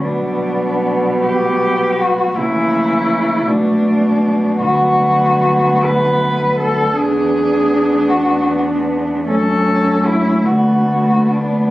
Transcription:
X:1
M:6/8
L:1/8
Q:3/8=52
K:Bm
V:1 name="Cello"
D3 G2 F | E3 D3 | [K:Bdor] F3 B2 A | G3 F z2 |
A2 E F2 D |]
V:2 name="Cello"
B,6 | ^A,3 =A,3 | [K:Bdor] B,6 | D6 |
C3 B,3 |]
V:3 name="Cello" clef=bass
F,6 | E,3 F,3- | [K:Bdor] F,6 | B,6 |
A,6 |]
V:4 name="Cello" clef=bass
B,,6 | C,3 B,,3 | [K:Bdor] D,,6 | E,,6 |
F,,3 D,,3 |]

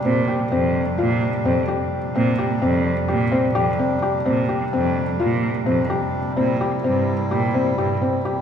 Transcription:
X:1
M:9/8
L:1/8
Q:3/8=85
K:Bblyd
V:1 name="Felt piano"
C G C2 F2 C G2 | C G C2 G C G C G | C G C2 F2 C G2 | C G C2 G C G C G |]
V:2 name="Harmonium"
D8- D- | D8- D- | D8- D | E8- E |]
V:3 name="Harmonium" clef=bass
[C,G,]8- [C,G,]- | [C,G,]8- [C,G,]- | [C,G,]8- [C,G,]- | [C,G,]8- [C,G,] |]
V:4 name="Cello" clef=bass
B,,2 F,,2 B,,2 F,, z2 | B,,2 F,,2 B,,2 F,, z2 | B,,2 F,,2 B,,2 F,, z2 | B,,2 G,,2 B,,2 G,, z2 |]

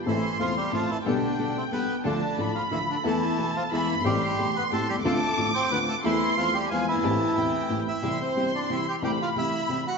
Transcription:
X:1
M:3/4
L:1/16
Q:1/4=180
K:Am
V:1 name="Violin section"
c'8 a4 | g12 | a4 b8 | a8 b4 |
c'12 | d'12 | c'8 ^g4 | a4 g2 g4 z2 |
[K:C] c'12 | b12 |]
V:2 name="Bandoneon"
[E,E]4 [F,F]2 [G,G]2 [F,F]2 [E,E]2 | [D,D]6 [C,C]2 [B,B]3 z | [D,D]6 [F,F]2 [E,E]2 [D,D]2 | [E,E]6 [F,F]2 [E,E]3 z |
[G,G]6 [B,B]2 [A,A]2 [G,G]2 | [A,A]6 [Cc]2 [B,B]2 [A,A]2 | [E,E]4 [F,F]2 [G,G]2 [F,F]2 [E,E]2- | [E,E]8- [E,E]2 [Ee]2- |
[K:C] [Ee]2 [Cc]4 [Dd]2 [Ee]2 [Gg]2 | [Gg]2 [Ff]2 [Ee]6 [^F^f]2 |]
V:3 name="String section"
[CEA]2 z2 [CEA]2 z2 [CEA]2 z2 | [B,GA]2 z2 [B,GA]2 z2 [B,GA]2 z2 | [DFA]2 z2 [DFA]2 z2 [DFA]2 z2 | [B,EA]2 z2 [B,EA]2 z2 [B,E^G]2 z2 |
[A,CG]2 z2 [A,CG]2 z2 [A,CG]2 z2 | [CDF]2 z2 [CDF]2 z2 [CDF]2 z2 | [E,A,CE]2 z2 [E,A,CE]2 z2 [^G,B,E]2 z2 | [A,CG]2 z2 [A,CG]2 z2 [A,CG]2 z2 |
[K:C] [CEG]2 z2 [CEG]2 z2 [CEG]2 z2 | [C,A,CG]2 z2 [C,A,CG]2 z2 [C,A,CG]2 z2 |]
V:4 name="Upright piano" clef=bass
[A,,,A,,E,A,CA]2 z2 [E,,,E,,E,A,CA]2 z2 [A,,,A,,E,A,CA]2 z2 | [B,,,B,,G,B,DA]2 z2 [B,,,B,,G,B,DA]2 z2 [B,,,B,,G,B,DA]2 z2 | [D,,D,F,A,DA]2 z2 [A,,,A,,F,A,DA]2 z2 [D,,D,F,A,DA]2 z2 | [E,,E,A,B,A]2 z2 [B,,,B,,E,A,B,A]2 z2 [E,,E,^G,B,^G]2 z/2 ^F,,,/2 =G,,,/2 ^G,,,/2 |
[A,,,A,,E,A,CG]2 z2 [E,,,E,,E,A,CG]2 z2 [A,,,A,,E,A,CG]2 z/2 B,,,/2 C,,/2 ^C,,/2 | [D,,D,A,CF]2 z2 [A,,,A,,D,A,CF]2 z2 [D,,D,A,CF]2 z2 | [E,,E,A,CA]2 z2 [E,,E,A,CA]2 z2 [E,,E,^G,B,^G]2 z/2 ^F,,,/2 =G,,,/2 ^G,,,/2 | [A,,,A,,E,A,CG]2 z2 [E,,,E,,E,A,CG]2 z2 [A,,,A,,E,A,CG]2 z2 |
[K:C] [C,,C,E,G,CG]2 z2 [G,,,G,,E,G,CG]2 z2 [C,,C,E,G,CG]2 z2 | [C,,C,E,A,CG]2 z2 [C,,C,E,A,CG]2 z2 [C,,C,E,A,CG]2 z2 |]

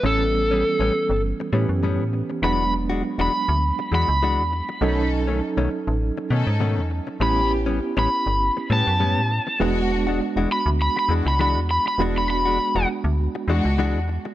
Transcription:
X:1
M:4/4
L:1/16
Q:"Swing 16ths" 1/4=100
K:Emix
V:1 name="Electric slide guitar"
A8 z8 | b2 z3 b4- b b6- | b2 z12 z2 | b2 z3 b4- b a6 |
z6 b z b b z b b z b b | z b b4 z8 z2 |]
V:2 name="String section"
z16 | z16 | [C^DA]4 z6 [CDA]3 z3 | [B,C=G]4 z6 [B,CG]3 z3 |
[G,DF]4 z6 [G,DF]3 z3 | [G,DF]4 z6 [G,DF]3 z3 |]
V:3 name="Reed electric piano"
[E,=G,B,C]8- [E,G,B,C]2 [E,B,C=G]6 | [F,G,B,D]16 | [F,C^DA]16 | [B,CE=G]16 |
[G,B,DF]16 | [G,B,DF]16 |]
V:4 name="Clean electric guitar"
[A,,=G,B,C] z2 [G,B,C] z [A,,G,B,C] z4 [A,,G,B,C] z [A,,G,B,C] z3 | [E,G,DF] z2 [G,DF] z [E,G,DF] z4 [E,G,DF] z [E,G,DF] z3 | [B,,^D,A,C] z2 [D,A,C] z [B,,D,A,C] z4 [B,,D,A,C] z [B,,D,A,C] z3 | [A,,=G,B,C] z2 [G,B,C] z [A,,G,B,C] z4 [A,,G,B,C] z [A,,G,B,C] z3 |
[E,G,DF] z2 [G,DF] z [E,G,DF] z4 [E,G,DF] z [E,G,DF] z3 | [E,G,DF] z2 [G,DF] z [E,G,DF] z4 [E,G,DF] z [E,G,DF] z3 |]
V:5 name="FM bass" clef=bass
A,,,4- A,,, A,,, z =G,,,2 z A,, F,,2 A,,2 z | E,,,4- E,,, E,,, z D,,2 z E,, C,,2 E,,2 z | B,,,4- B,,, B,,, z A,,,2 z B,, G,,2 E,,2 z | A,,,4- A,,, A,,, z =G,,,2 z A,, F,,2 A,,2 z |
E,,,4- E,,, E,,, z D,,2 z E,, C,,2 E,,2 z | E,,,4- E,,, E,,, z D,,2 z E,, C,,2 E,,2 z |]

